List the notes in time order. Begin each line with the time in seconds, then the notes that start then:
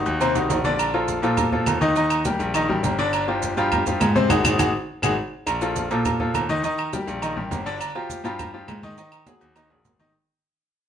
Already playing: D#3 D#4 F#4
0.06 D#2, high conga, low agogo, maracas
0.21 C3 C4 C5, high conga, low agogo, maracas
0.35 C2 D#3 D#4 F#4, high conga, high timbale, maracas
0.49 A#1, high conga, high timbale, low agogo, maracas
0.64 D3 D4 D5, high conga, low timbale, maracas
0.79 high conga, low agogo, claves, maracas
0.94 F3 F4 A4, high conga, low agogo
1.08 high conga, low timbale, maracas
1.22 A#2 F3 F4 A4, low agogo, maracas
1.37 high conga, low conga, low agogo, claves, maracas
1.52 F3 F4 A4, high conga, low conga
1.66 D#2, high conga, low timbale, low agogo, claves, maracas
1.81 D#3 D#4 D#5, high conga, maracas
1.96 D#3 D#4 D#5, low agogo, maracas
2.10 high conga, low agogo, claves, maracas
2.25 G3 G4 A#4, high conga, low timbale, maracas
2.39 A#1, high conga, low agogo, maracas
2.54 D#3 D#4 D#5, high conga, low agogo, claves, maracas
2.69 A1 G3 G4 A#4, high conga
2.83 G1, high conga, low timbale, low agogo, maracas
2.99 D3 D4 D5, maracas
3.13 high conga, low agogo, claves, maracas
3.28 F3 F4 G4, high conga, low agogo
3.42 high conga, low timbale, maracas
3.57 G2 F3 F4 G4, low agogo, maracas
3.72 high conga, low conga, low agogo, claves, maracas
3.86 F3 F4 G4, high conga, low conga, maracas
4.00 G#2, high conga, low timbale, low agogo, claves, maracas
4.15 C3 C4 C5, high conga, maracas
4.29 G#1 D#4 F#4 G#4, high conga, high timbale, claves, maracas
4.44 G#1 D#4 F#4 G#4, high conga, high timbale, claves, maracas
4.59 G#1 D#4 F#4 G#4, high conga, high timbale, claves, maracas
5.02 G#1 D#4 F#4 G#4, high conga, high timbale, claves, maracas
5.47 A#1, high conga, low agogo, claves, maracas
5.61 F3 F4 A4, high conga, low agogo, maracas
5.76 high conga, low timbale, maracas
5.91 A#2 F3 F4 A4, low agogo, maracas
6.05 high conga, low conga, low agogo, claves, maracas
6.20 F3 F4 A4, high conga, low conga
6.34 D#2, high conga, low timbale, low agogo, claves, maracas
6.49 D#3 D#4 D#5, high conga, maracas
6.64 D#3 D#4 D#5, high conga, low agogo, maracas
6.78 high conga, low agogo, claves
6.93 G3 G4 A#4, high conga, low timbale, maracas
7.07 A#1, high conga, low agogo, maracas
7.22 D#3 D#4 D#5, high conga, low agogo, claves, maracas
7.36 A1 G3 G4 A#4, high conga
7.51 G1, high conga, low timbale, low agogo, maracas
7.66 D3 D4 D5, maracas
7.81 high conga, low agogo, claves, maracas
7.95 F3 F4 G4, high conga, low agogo
8.10 high conga, low timbale, maracas
8.24 G2 F3 F4 G4, low agogo, maracas
8.39 high conga, low conga, low agogo, claves, maracas
8.54 F3 F4 G4, high conga
8.68 G#2, high conga, low timbale, low agogo, claves, maracas
8.83 D#3 D#4 D#5, high conga, maracas
8.98 D#3 D#4 D#5, high conga, high timbale, low agogo, maracas
9.12 high conga, low agogo, claves, maracas
9.27 F#3 F#4 G#4, high conga, low timbale, maracas
9.41 D#2, high conga, low timbale, low agogo, maracas
9.56 D#3 D#4 D#5, high conga, low timbale, low agogo, claves, maracas
9.70 A#1 F#3 F#4 G#4, low timbale
9.84 G#1, high conga, low timbale, low agogo, maracas
9.99 D#3 D#4 D#5, high conga, low timbale, maracas